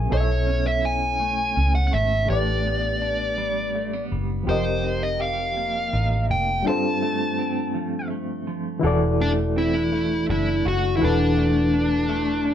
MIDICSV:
0, 0, Header, 1, 5, 480
1, 0, Start_track
1, 0, Key_signature, 1, "minor"
1, 0, Tempo, 727273
1, 67, Time_signature, 6, 3, 24, 8
1, 8277, End_track
2, 0, Start_track
2, 0, Title_t, "Lead electric guitar"
2, 0, Program_c, 0, 29
2, 85, Note_on_c, 0, 73, 75
2, 441, Note_off_c, 0, 73, 0
2, 444, Note_on_c, 0, 76, 74
2, 559, Note_off_c, 0, 76, 0
2, 563, Note_on_c, 0, 80, 95
2, 1152, Note_off_c, 0, 80, 0
2, 1155, Note_on_c, 0, 78, 82
2, 1220, Note_off_c, 0, 78, 0
2, 1237, Note_on_c, 0, 78, 61
2, 1274, Note_on_c, 0, 76, 80
2, 1275, Note_off_c, 0, 78, 0
2, 1515, Note_off_c, 0, 76, 0
2, 1517, Note_on_c, 0, 74, 69
2, 2686, Note_off_c, 0, 74, 0
2, 2962, Note_on_c, 0, 72, 70
2, 3320, Note_on_c, 0, 75, 67
2, 3325, Note_off_c, 0, 72, 0
2, 3437, Note_off_c, 0, 75, 0
2, 3443, Note_on_c, 0, 77, 84
2, 4129, Note_off_c, 0, 77, 0
2, 4164, Note_on_c, 0, 79, 89
2, 4379, Note_off_c, 0, 79, 0
2, 4407, Note_on_c, 0, 81, 86
2, 5331, Note_off_c, 0, 81, 0
2, 6081, Note_on_c, 0, 62, 78
2, 6144, Note_off_c, 0, 62, 0
2, 6322, Note_on_c, 0, 64, 97
2, 6768, Note_off_c, 0, 64, 0
2, 6805, Note_on_c, 0, 64, 89
2, 7043, Note_off_c, 0, 64, 0
2, 7048, Note_on_c, 0, 66, 108
2, 7235, Note_off_c, 0, 66, 0
2, 7238, Note_on_c, 0, 64, 66
2, 7276, Note_off_c, 0, 64, 0
2, 7289, Note_on_c, 0, 62, 86
2, 8277, Note_off_c, 0, 62, 0
2, 8277, End_track
3, 0, Start_track
3, 0, Title_t, "Reed electric piano"
3, 0, Program_c, 1, 4
3, 0, Control_c, 1, 64, 127
3, 0, Note_on_c, 1, 54, 67
3, 0, Note_on_c, 1, 61, 55
3, 0, Note_on_c, 1, 68, 61
3, 0, Note_on_c, 1, 70, 57
3, 0, Note_on_c, 1, 76, 70
3, 47, Note_on_c, 1, 47, 56
3, 62, Note_on_c, 1, 59, 52
3, 69, Note_off_c, 1, 68, 0
3, 70, Note_on_c, 1, 69, 50
3, 72, Note_off_c, 1, 70, 0
3, 75, Control_c, 1, 64, 0
3, 76, Note_off_c, 1, 76, 0
3, 77, Note_off_c, 1, 54, 0
3, 79, Note_off_c, 1, 61, 0
3, 83, Note_on_c, 1, 73, 50
3, 93, Note_on_c, 1, 75, 51
3, 123, Note_off_c, 1, 75, 0
3, 134, Note_on_c, 1, 76, 60
3, 192, Control_c, 1, 64, 127
3, 1471, Note_off_c, 1, 47, 0
3, 1478, Note_off_c, 1, 59, 0
3, 1482, Note_off_c, 1, 69, 0
3, 1488, Note_on_c, 1, 45, 57
3, 1489, Note_off_c, 1, 73, 0
3, 1499, Note_on_c, 1, 57, 51
3, 1510, Note_on_c, 1, 67, 51
3, 1514, Note_off_c, 1, 76, 0
3, 1516, Control_c, 1, 64, 0
3, 1523, Note_on_c, 1, 71, 51
3, 1535, Note_on_c, 1, 74, 65
3, 1643, Control_c, 1, 64, 127
3, 2911, Note_off_c, 1, 45, 0
3, 2917, Note_off_c, 1, 57, 0
3, 2922, Note_off_c, 1, 67, 0
3, 2926, Note_on_c, 1, 53, 59
3, 2929, Note_off_c, 1, 71, 0
3, 2935, Note_off_c, 1, 74, 0
3, 2936, Note_on_c, 1, 60, 53
3, 2949, Note_on_c, 1, 67, 57
3, 2957, Control_c, 1, 64, 0
3, 2961, Note_on_c, 1, 70, 54
3, 2974, Note_on_c, 1, 75, 64
3, 3078, Control_c, 1, 64, 127
3, 4350, Note_off_c, 1, 53, 0
3, 4355, Note_off_c, 1, 60, 0
3, 4362, Note_off_c, 1, 67, 0
3, 4368, Note_off_c, 1, 70, 0
3, 4371, Note_on_c, 1, 55, 63
3, 4374, Note_off_c, 1, 75, 0
3, 4384, Note_on_c, 1, 62, 56
3, 4394, Control_c, 1, 64, 0
3, 4396, Note_on_c, 1, 65, 57
3, 4404, Note_on_c, 1, 69, 57
3, 4418, Note_on_c, 1, 72, 69
3, 4519, Control_c, 1, 64, 127
3, 5793, Note_off_c, 1, 55, 0
3, 5799, Note_off_c, 1, 62, 0
3, 5804, Note_on_c, 1, 52, 79
3, 5805, Note_off_c, 1, 65, 0
3, 5809, Note_off_c, 1, 69, 0
3, 5814, Note_on_c, 1, 64, 74
3, 5816, Note_off_c, 1, 72, 0
3, 5825, Note_on_c, 1, 66, 73
3, 5837, Control_c, 1, 64, 0
3, 5838, Note_on_c, 1, 69, 72
3, 5852, Note_on_c, 1, 74, 83
3, 5951, Control_c, 1, 64, 127
3, 7229, Note_off_c, 1, 52, 0
3, 7234, Note_off_c, 1, 64, 0
3, 7240, Note_off_c, 1, 66, 0
3, 7244, Note_on_c, 1, 52, 71
3, 7246, Note_off_c, 1, 69, 0
3, 7253, Note_off_c, 1, 74, 0
3, 7254, Note_on_c, 1, 64, 66
3, 7264, Note_on_c, 1, 66, 64
3, 7278, Note_on_c, 1, 69, 63
3, 7289, Note_on_c, 1, 71, 82
3, 8277, Note_off_c, 1, 52, 0
3, 8277, Note_off_c, 1, 64, 0
3, 8277, Note_off_c, 1, 66, 0
3, 8277, Note_off_c, 1, 69, 0
3, 8277, Note_off_c, 1, 71, 0
3, 8277, End_track
4, 0, Start_track
4, 0, Title_t, "Clean electric guitar"
4, 0, Program_c, 2, 27
4, 0, Note_on_c, 2, 54, 82
4, 0, Note_on_c, 2, 64, 63
4, 0, Note_on_c, 2, 68, 76
4, 71, Note_on_c, 2, 47, 70
4, 73, Note_off_c, 2, 64, 0
4, 76, Note_on_c, 2, 64, 63
4, 114, Note_off_c, 2, 68, 0
4, 309, Note_on_c, 2, 61, 49
4, 538, Note_off_c, 2, 64, 0
4, 541, Note_on_c, 2, 64, 54
4, 561, Note_off_c, 2, 54, 0
4, 790, Note_on_c, 2, 57, 58
4, 1023, Note_off_c, 2, 61, 0
4, 1031, Note_on_c, 2, 61, 50
4, 1262, Note_off_c, 2, 57, 0
4, 1264, Note_on_c, 2, 57, 54
4, 1500, Note_off_c, 2, 47, 0
4, 1503, Note_off_c, 2, 64, 0
4, 1503, Note_on_c, 2, 45, 74
4, 1506, Note_on_c, 2, 62, 59
4, 1557, Note_off_c, 2, 61, 0
4, 1758, Note_on_c, 2, 59, 48
4, 1778, Note_off_c, 2, 57, 0
4, 1984, Note_off_c, 2, 62, 0
4, 1992, Note_on_c, 2, 62, 56
4, 2229, Note_on_c, 2, 55, 62
4, 2471, Note_off_c, 2, 59, 0
4, 2474, Note_on_c, 2, 57, 53
4, 2596, Note_off_c, 2, 57, 0
4, 2596, Note_on_c, 2, 59, 46
4, 2715, Note_off_c, 2, 55, 0
4, 2718, Note_on_c, 2, 55, 57
4, 2945, Note_off_c, 2, 45, 0
4, 2947, Note_off_c, 2, 55, 0
4, 2950, Note_on_c, 2, 53, 78
4, 2955, Note_on_c, 2, 67, 54
4, 2998, Note_off_c, 2, 62, 0
4, 3000, Note_off_c, 2, 59, 0
4, 3194, Note_on_c, 2, 63, 54
4, 3428, Note_off_c, 2, 67, 0
4, 3431, Note_on_c, 2, 67, 55
4, 3675, Note_on_c, 2, 58, 60
4, 3908, Note_off_c, 2, 63, 0
4, 3915, Note_on_c, 2, 63, 55
4, 4151, Note_off_c, 2, 58, 0
4, 4160, Note_on_c, 2, 58, 59
4, 4391, Note_off_c, 2, 63, 0
4, 4393, Note_on_c, 2, 43, 81
4, 4396, Note_on_c, 2, 60, 52
4, 4414, Note_off_c, 2, 53, 0
4, 4441, Note_off_c, 2, 58, 0
4, 4633, Note_on_c, 2, 57, 54
4, 4653, Note_off_c, 2, 67, 0
4, 4867, Note_off_c, 2, 60, 0
4, 4875, Note_on_c, 2, 60, 59
4, 5111, Note_on_c, 2, 53, 59
4, 5345, Note_off_c, 2, 57, 0
4, 5348, Note_on_c, 2, 57, 58
4, 5584, Note_off_c, 2, 53, 0
4, 5592, Note_on_c, 2, 53, 61
4, 5826, Note_off_c, 2, 53, 0
4, 5829, Note_on_c, 2, 52, 89
4, 5831, Note_off_c, 2, 43, 0
4, 5879, Note_off_c, 2, 60, 0
4, 6071, Note_off_c, 2, 57, 0
4, 6074, Note_on_c, 2, 57, 58
4, 6311, Note_on_c, 2, 60, 55
4, 6430, Note_off_c, 2, 60, 0
4, 6430, Note_on_c, 2, 62, 55
4, 6547, Note_off_c, 2, 57, 0
4, 6549, Note_on_c, 2, 57, 69
4, 6786, Note_off_c, 2, 62, 0
4, 6794, Note_on_c, 2, 62, 62
4, 7032, Note_on_c, 2, 66, 70
4, 7264, Note_off_c, 2, 52, 0
4, 7267, Note_on_c, 2, 52, 85
4, 7503, Note_off_c, 2, 57, 0
4, 7506, Note_on_c, 2, 57, 60
4, 7743, Note_off_c, 2, 62, 0
4, 7746, Note_on_c, 2, 62, 61
4, 7976, Note_off_c, 2, 57, 0
4, 7978, Note_on_c, 2, 57, 68
4, 8216, Note_off_c, 2, 62, 0
4, 8219, Note_on_c, 2, 62, 64
4, 8277, Note_off_c, 2, 52, 0
4, 8277, Note_off_c, 2, 57, 0
4, 8277, Note_off_c, 2, 62, 0
4, 8277, Note_off_c, 2, 66, 0
4, 8277, End_track
5, 0, Start_track
5, 0, Title_t, "Fingered electric bass"
5, 0, Program_c, 3, 33
5, 77, Note_on_c, 3, 35, 90
5, 1006, Note_off_c, 3, 35, 0
5, 1035, Note_on_c, 3, 37, 74
5, 1248, Note_off_c, 3, 37, 0
5, 1276, Note_on_c, 3, 32, 78
5, 1488, Note_off_c, 3, 32, 0
5, 1514, Note_on_c, 3, 33, 93
5, 2684, Note_off_c, 3, 33, 0
5, 2718, Note_on_c, 3, 30, 88
5, 2929, Note_off_c, 3, 30, 0
5, 2956, Note_on_c, 3, 29, 99
5, 3885, Note_off_c, 3, 29, 0
5, 3916, Note_on_c, 3, 33, 83
5, 4158, Note_on_c, 3, 29, 84
5, 4168, Note_off_c, 3, 33, 0
5, 4369, Note_off_c, 3, 29, 0
5, 5832, Note_on_c, 3, 28, 116
5, 6763, Note_off_c, 3, 28, 0
5, 6794, Note_on_c, 3, 30, 90
5, 7007, Note_off_c, 3, 30, 0
5, 7036, Note_on_c, 3, 30, 101
5, 7248, Note_off_c, 3, 30, 0
5, 7277, Note_on_c, 3, 28, 116
5, 8277, Note_off_c, 3, 28, 0
5, 8277, End_track
0, 0, End_of_file